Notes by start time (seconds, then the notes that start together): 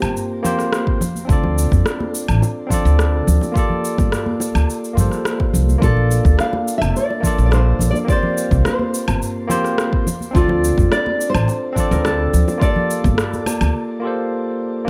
Already playing: A#3 C4 F4 G4 C5
0.02 G1, high bongo, cabasa, low woodblock
0.17 cabasa
0.43 A#3 C4 F4 G4 C5, high bongo, low conga, cabasa
0.59 cross-stick, cabasa
0.73 cross-stick, cabasa
0.87 kick
1.01 high bongo, low conga, cabasa
1.15 high conga, cabasa
1.25 D2 C4 D4 F4, kick
1.30 A4 D5, cabasa
1.43 high bongo, low conga
1.58 cabasa
1.71 F2, kick, high conga, cabasa
1.86 cross-stick, cabasa
2.00 high bongo, high conga
2.15 cabasa
2.28 A1, cabasa, low woodblock
2.42 high bongo, cabasa
2.67 C4 D4 F4, kick, low conga
2.71 A4 D5, cabasa
2.85 D2, cabasa
2.99 cross-stick, high bongo, cabasa
3.27 D2, low conga, cabasa
3.41 high bongo, high conga, cabasa
3.52 A#3 F4 G4, kick
3.57 A4 D5, cabasa
3.70 low conga
3.85 cabasa
3.98 G1, kick, high bongo, high conga, cabasa
4.12 cross-stick, cabasa
4.26 high conga
4.40 high bongo, cabasa
4.55 D2, cabasa, low woodblock
4.70 cabasa
4.84 cabasa
4.93 G2 A#3 F4 G4, kick, high bongo
4.98 A4 C5, low conga, cabasa
5.12 cross-stick, cabasa
5.25 cross-stick, cabasa
5.40 kick, high bongo
5.53 C2, low conga, cabasa
5.68 high conga, cabasa
5.78 A#1 A#3 D4 F4, kick
5.83 A4 D5, cabasa
5.97 low conga
6.11 high bongo, cabasa
6.25 D2, kick, high conga, cabasa
6.39 F5, cross-stick, cabasa
6.53 high bongo, high conga
6.68 cabasa
6.78 F1 E5, low woodblock
6.83 cabasa
6.96 D5, cabasa
7.10 high bongo
7.20 A#3 D4 F4, kick, low conga
7.24 A4 D5, cabasa
7.38 A#1, cabasa
7.46 D5
7.51 C5, cross-stick, high bongo, cabasa
7.79 A#1, low conga, cabasa
7.91 D5
7.95 high conga, cabasa
8.05 A#3 C4 F4, kick, high bongo
8.09 G4 C5 D5, cabasa
8.23 low conga
8.38 cabasa
8.51 C2, kick, high bongo, high conga, cabasa
8.65 C5, cross-stick, cabasa
8.79 high conga
8.94 cabasa
9.08 G1, high bongo, cabasa, low woodblock
9.22 cabasa
9.48 A#3 C4 F4 G4 C5, high bongo, low conga, cabasa
9.65 cross-stick, cabasa
9.78 cross-stick, cabasa
9.93 kick
10.07 high bongo, low conga, cabasa
10.21 high conga, cabasa
10.31 D2 C4 D4 F4, kick
10.36 F4 A4 D5, cabasa
10.48 high bongo, low conga
10.64 cabasa
10.78 F2, kick, high conga, cabasa
10.92 D5, cross-stick, cabasa
11.06 high bongo, high conga
11.21 cabasa
11.30 C5
11.35 A1, cabasa, low woodblock
11.48 high bongo, cabasa
11.73 C4 D4 F4, kick, low conga
11.77 A4 D5, cabasa
11.91 D2 A#4, cabasa
12.04 A4, cross-stick, high bongo, cabasa
12.33 D2, low conga, cabasa
12.48 high bongo, high conga, cabasa
12.58 A#3 F4 G4, kick
12.62 A4 D5, cabasa
12.76 low conga
12.91 cabasa
13.04 G1, kick, high bongo, high conga, cabasa
13.18 cross-stick, cabasa
13.34 high conga, cabasa
13.46 high bongo, high conga, cabasa, low woodblock
13.61 D2, cabasa, low woodblock
14.00 A#3 F4 G4
14.05 A4 C5
14.84 A#3 D4